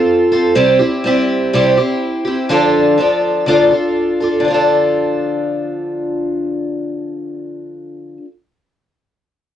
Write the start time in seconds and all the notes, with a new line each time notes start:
Already playing: C4 F4 A4
0.32 C4 F4 A4
0.55 C3 G3 C4 E4 G4
0.79 C4 E4 G4
1.04 G3 C4 E4 G4
1.53 C3 G3 C4 E4 G4
1.78 C4 E4 G4
2.25 C4 E4 G4
2.49 D3 F3 D4 F4 A4
2.98 F3 D4 F4 A4
3.46 D3 F3 D4 F4 A4
3.71 D4 F4 A4
4.20 D4 F4 A4
4.40 D3
4.45 F3 D4
4.50 F4 A4